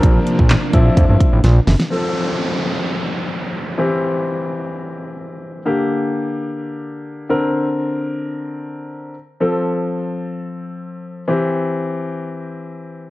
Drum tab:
HH |x-x-x-x-x-x-x-ox|----------------|----------------|----------------|
CP |----x-----------|----------------|----------------|----------------|
SD |----o-------o-oo|----------------|----------------|----------------|
BD |o--o--o-o-o-----|----------------|----------------|----------------|

HH |----------------|----------------|----------------|
CP |----------------|----------------|----------------|
SD |----------------|----------------|----------------|
BD |----------------|----------------|----------------|